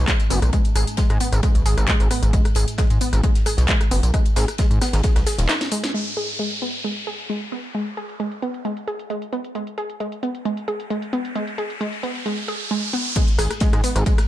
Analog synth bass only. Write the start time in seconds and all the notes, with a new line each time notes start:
0.30 F#1
0.42 A#1
0.76 G#1
1.10 G#2
1.33 G#1
1.55 B1
1.66 G#1
1.78 G#1
2.00 G#1
2.23 G#1
2.56 G#1
2.90 G#2
3.13 G#1
3.58 B1
3.91 F#1
4.03 A#1
4.36 G#1
4.71 G#2
4.93 G#1
5.16 B1
5.39 D#1
13.39 G#1
13.73 G#2
13.96 G#1